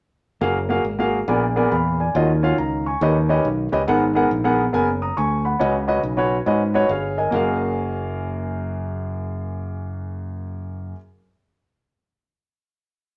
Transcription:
0.41 F#1 A#3 F#4 G#4 F5
0.69 A#3 F#4 G#4 F5
0.84 G#1
0.99 A#3 F#4 G#4 F5
1.28 A#1 A#2 B3 G#4 A#4 D5
1.56 B3 G#4 A#4 D5
1.72 E2 F5 B5
2.00 D5 G#5
2.15 D#2 D#3 C#4 F4 F#4 D#5
2.43 C#4 F4 F#4 F5
2.58 C#2 F5 A#5
2.86 G#5 C#6
3.01 D#2 D#3 C#4 G4 B4 D#5
3.29 C#4 G4 B4 D#5
3.45 B1
3.72 C#2 C#4 G4 B4 D#5
3.88 G#1 G#2 B3 G#4 A#4 F#5
4.15 B3 G#4 A#4 F#5
4.31 A#1
4.44 B3 G#4 A#4 F#5
4.73 F#1 B3 G#4 A#4 G#5
5.02 A#5 D#6
5.17 D2 G#5 C#6
5.45 F#5 B5
5.59 C#2 C#3 C#4 F#4 B4 D#5
5.88 C#4 F#4 B4 D#5
6.03 B1
6.17 C#4 F#4 B4 C#5
6.46 G#2 C#4 F#4 B4 D#5
6.74 C#4 F#4 B4 C#5 D#5
6.89 G1 G#4 C#5 F5
7.18 A#4 D#5 G#5
7.31 F#1 F#2 A#3 F#4 G#4
7.36 F5

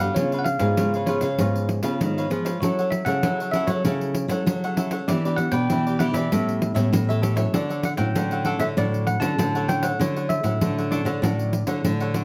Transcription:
Already playing: D3 B3 F#4 A4 F5
0.00 G4 B4 F#5
0.15 C#3 B3 F4 B4 C#5 F5, pandeiro
0.19 G#4
0.32 B4 C#5 F5, pandeiro
0.39 F#5
0.45 F5, muted cavaquinho stroke, pandeiro
0.59 G#2 B3 F4 G#4 B4 C#5 F5, pandeiro
0.77 G#2 C#3 F4 B4 C#5 F5, pandeiro
0.94 B4 C#5 F5, pandeiro
1.06 B3 F4 G#4 B4 C#5 F5, pandeiro
1.21 C#3 B4 C#5 F5, pandeiro
1.39 G#2 C#3 B3 F4 G#4 B4 C#5 F5, pandeiro
1.55 pandeiro
1.69 muted cavaquinho stroke, pandeiro
1.83 C#3 B3 F4 G#4 B4 C#5 F5, pandeiro
2.01 G#2 D#3, pandeiro
2.18 B4 C#5 F5, pandeiro
2.30 F3 B3 F4 G#4 B4 C#5 F5, pandeiro
2.45 B4 C#5 F5, pandeiro
2.61 F#3 C#4 E4 A4 C#5 F#5, pandeiro
2.79 A4 C#5 F#5, pandeiro
2.91 E5, muted cavaquinho stroke, pandeiro
3.05 C#3 C#4 E4 A4 C#5 F#5, pandeiro
3.23 C#3 F#3 E4 A4 C#5 F#5, pandeiro
3.40 A4 C#5 F#5, pandeiro
3.52 C#4 E4 A4 C#5 E5 F#5, pandeiro
3.56 E4 A4
3.67 F#3 A4 C#5 F#5, pandeiro
3.85 C#3 F#3 C#4 E4 A4 C#5 F#5, pandeiro
4.01 pandeiro
4.15 muted cavaquinho stroke, pandeiro
4.28 F#3 C#4 E4 A4 C#5 F#5, pandeiro
4.32 A4
4.46 C#3 F#3, pandeiro
4.64 A4 C#5 F#5, pandeiro
4.77 C#4 E4 A4 C#5 F#5, pandeiro
4.91 A4 C#5 F#5, pandeiro
5.08 E3 B3 D4 E4 G4 B4 D5, pandeiro
5.25 B3 D4 G4 B4 D5, pandeiro
5.36 B3 D4 G4 F#5, muted cavaquinho stroke, pandeiro
5.52 B2 G4 B4 D5 G5, pandeiro
5.70 B2 E3 E4 G4 B4 D5, pandeiro
5.87 G4 B4 D5, pandeiro
5.99 B3 D4 E4 G4 B4 D5 F#5, pandeiro
6.13 E3 G4 B4 D5 E5, pandeiro
6.32 A2 G3 B3 C#4 G4 A4 C#5 E5, pandeiro
6.49 pandeiro
6.62 muted cavaquinho stroke, pandeiro
6.74 A2 G3 B3 C#4 A4 C#5 E5, pandeiro
6.93 A2 E3, pandeiro
7.09 A4 C#5 E5, pandeiro
7.22 G4 A4 C#5 E5, pandeiro
7.36 F#3 C#4 E4 A4 C#5 E5, pandeiro
7.54 D3 D4 A4 C#5 D5 F#5, pandeiro
7.69 A4 C#5 F#5, pandeiro
7.82 F#5, muted cavaquinho stroke, pandeiro
7.97 A2 F#3 C#4 E4 A4 C#5 F#5 G5, pandeiro
8.15 A2 D3 D4 A4 C#5 F#5, pandeiro
8.31 A4 C#5 F#5, pandeiro
8.45 F#3 C#4 D4 E4 A4 C#5 F#5, pandeiro
8.60 D3 A4 C#5 E5 F#5, pandeiro
8.77 A2 D3 F#3 D4 E4 A4 C#5 D5 F#5, pandeiro
8.94 pandeiro
9.07 F#5, muted cavaquinho stroke, pandeiro
9.20 D3 F#3 C#4 E4 A4 C#5 F#5 A5, pandeiro
9.38 A2 D3, pandeiro
9.55 A4 C#5 F#5, pandeiro
9.68 F#3 C#4 D4 E4 A4 C#5 F#5 G5, pandeiro
9.83 A4 C#5 F#5, pandeiro
9.99 D3 F#3 C#4 D4 E4 A4 C#5 F#5, pandeiro
10.16 A4 C#5 F#5, pandeiro
10.29 E5, muted cavaquinho stroke, pandeiro
10.43 A2 F#3 C#4 E4 A4 C#5 F#5, pandeiro
10.61 A2 D3 D4 A4 C#5 F#5, pandeiro
10.78 A4 C#5 F#5, pandeiro
10.91 F#3 C#4 D4 E4 A4 C#5 D5 F#5, pandeiro
11.05 D3 A4 C#5 F#5, pandeiro
11.22 A2 D3 F#3 C#4 D4 E4 A4 C#5 F#5, pandeiro
11.39 pandeiro
11.53 muted cavaquinho stroke, pandeiro
11.67 D3 F#3 E4 A4 C#5 F#5, pandeiro
11.84 A2 D3, pandeiro
12.00 A4 C#5 F#5, pandeiro
12.14 F#3 C#4 D4 E4 A4 C#5 F#5, pandeiro

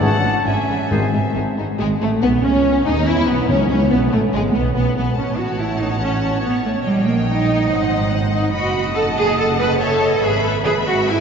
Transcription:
0.00 G#1 G#2 E3 G#3 C#4 E4 G#4 C#5 F#5 A5
0.23 G#1 G#2 G#3 C#4 E4
0.44 G#1 G#2 E3 G#3 C#4 E4 E5 G#5
0.68 G#1 G#2 G#3 C#4 E4
0.91 G#1 G#2 D#3 G#3 C4 D#4 G#4 C5
1.13 G#1 G#2 G#3 C4 D#4
1.35 G#1 G#2 G#3 C4 D#4
1.57 G#1 G#2 G#3 C4 D#4
1.79 G#1 G#3
2.00 A1 A3
2.22 B1 B3
2.43 C#2 C#4
2.85 D#2 D#4
3.06 E2 E4
3.27 B1 B3
3.49 C#2 B2 C#4
3.68 C#2 C#4
3.91 B1 B3
4.12 A1 A3
4.33 G#1 G#3
4.53 B1 B3
4.74 B1 B3
4.95 B1 B3
5.15 A1 C#4 C#5 F#5 A5
5.39 F#4
5.60 E4
5.81 D#4
6.01 C#4
6.22 C#4
6.44 B3
6.64 A3
6.83 A#1 G3 D#5 G5
7.07 A#3
7.28 D#4
7.70 G#1 C5 F#5
8.32 D#4
8.52 F#1 F#4 D#5 B5
8.72 F#5
8.95 A4 A5
9.17 G#4
9.38 A4 F#5
9.59 B4
9.79 A4 C#5 E5 A5
10.02 D#5
10.22 G#1 G#4 B4 E5 B5
10.44 A4
10.64 G#4 E5 B5
10.86 F#4
11.06 E4 E5 G#5

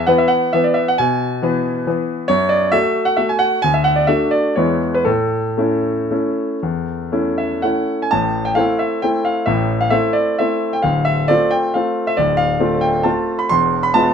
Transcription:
0.07 E3 B3 B4 F#5
0.18 E5
0.28 F#5
0.53 E3 B3 B4 E5
0.64 D5
0.74 E5
0.88 F#5
0.98 B2 G#5
1.42 E3 B3 B4
1.87 E3 B3 B4
2.28 F#2 C#5
2.49 D5
2.72 A3 F#4 E5
3.05 F#5
3.17 A3 F#4 E5
3.29 G#5
3.39 F#5
3.62 D2 G#5
3.74 E5
3.84 F#5
3.96 D5
4.07 A3 D4 F#4 E5
4.31 D5
4.56 E2 G#3 B3 E4 C#5
4.95 B4
5.05 A2 A4
5.57 A3 C#4 E4
6.11 A3 C#4 E4
6.63 E2
7.12 A3 C#4 E4
7.38 E5
7.62 A3 C#4 E4 F#5
8.02 G#5
8.11 A1 A2 A5
8.45 G5
8.55 A3 C4 E4 F5
8.79 E5
9.02 A3 C4 E4 G5
9.25 F5
9.46 A1 A2 E5
9.81 F5
9.90 A3 C4 E4 E5
10.13 D5
10.39 A3 C4 E4 E5
10.73 G5
10.82 D1 D2 F5
11.05 E5
11.28 A3 C4 F4 D5
11.51 G5
11.74 A3 C4 F4 F5
12.07 E5
12.17 D1 D2 D5
12.37 F5
12.60 A3 C4 F4
12.81 G5
13.03 A3 C4 F4 A5
13.39 B5
13.49 E1 E2 C6
13.83 B5
13.94 G#3 B3 F4 A5

